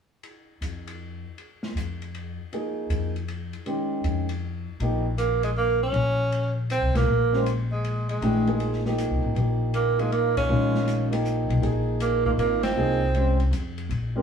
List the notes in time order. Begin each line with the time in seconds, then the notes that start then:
0.23 ride
0.61 F2, hi-hat pedal, ride
0.87 ride
1.38 ride
1.63 snare
1.75 F2, hi-hat pedal, ride
2.02 ride
2.15 ride
2.53 F3 A#3 D#4 G#4, ride
2.89 F2, hi-hat pedal, ride
3.16 ride
3.28 ride
3.53 ride
3.66 D#3 G#3 C#4 G4, ride
4.04 F2, hi-hat pedal, ride
4.29 ride
4.80 A#1 F3 A#3 D#4 G4, ride
5.18 A#3, hi-hat pedal, ride
5.43 G#3, ride
5.57 A#3
5.83 C#4
5.93 A#1, ride
6.32 ride
6.70 C4, hi-hat pedal, ride
6.82 C2
6.94 B1 A#3, snare, ride
7.07 A#1
7.33 G#3 C#4 G4 C5, snare
7.46 hi-hat pedal, ride
7.72 G#3
7.84 ride
8.09 G#3, ride
8.21 A#1 E3 A3 D4 G4, ride
8.46 F3 A#3 D#4 G#4, ride
8.60 ride
8.73 snare
8.85 F3 A#3 D#4 G4, snare
8.98 hi-hat pedal, ride
9.10 C2
9.23 A1
9.35 A#1 F3 A#3 D#4 G4, ride
9.74 A#3, hi-hat pedal, ride
9.98 F3 G#3 A#3 D#4 F4, ride
10.12 A#3, ride
10.37 C#4, kick, ride
10.49 A#1 D#3 G#3 C#4 F4
10.75 snare
10.88 hi-hat pedal, ride
11.11 F3 A#3 D#4 G4, ride
11.25 hi-hat pedal
11.49 B1, ride
11.62 A#1 F3 A#3 D#4 G#4, ride
12.00 A#3, hi-hat pedal, ride
12.25 F3 A#3 D#4 F4, kick
12.37 G#1 A#3, ride
12.63 C4, snare, ride
12.75 C2 F3 A#3 D#4 G#4
13.15 G#3 C#4 G4 C5, ride
13.40 ride
13.51 F2, hi-hat pedal, ride
13.78 ride
13.89 A#1, ride
14.16 G#3 C#4 G4 A#4